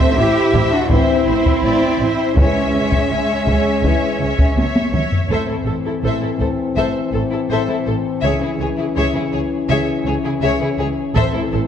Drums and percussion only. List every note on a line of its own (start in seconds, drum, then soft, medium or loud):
0.54 taiko medium
0.91 taiko medium
1.46 taiko medium
2.37 taiko medium
2.92 taiko medium
3.47 taiko medium
3.84 taiko medium
4.39 taiko medium
4.58 taiko high medium
4.76 taiko high medium
4.94 taiko mid medium
5.12 taiko low medium
5.29 taiko soft
6.40 taiko soft
11.16 taiko soft